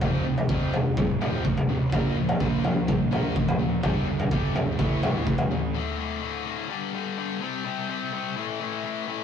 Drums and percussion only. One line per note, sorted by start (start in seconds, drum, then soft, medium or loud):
0.01 kick loud
0.01 floor tom medium
0.38 floor tom medium
0.49 kick loud
0.73 floor tom medium
0.97 kick loud
0.97 mid tom medium
1.21 floor tom medium
1.45 kick loud
1.57 floor tom medium
1.92 kick loud
1.92 floor tom medium
2.29 floor tom medium
2.40 kick loud
2.64 floor tom medium
2.88 kick loud
2.88 mid tom medium
3.12 floor tom medium
3.36 kick loud
3.48 floor tom medium
3.83 kick loud
3.83 floor tom medium
4.19 floor tom medium
4.31 kick loud
4.55 floor tom medium
4.79 kick loud
5.03 floor tom medium
5.27 kick loud
5.38 floor tom medium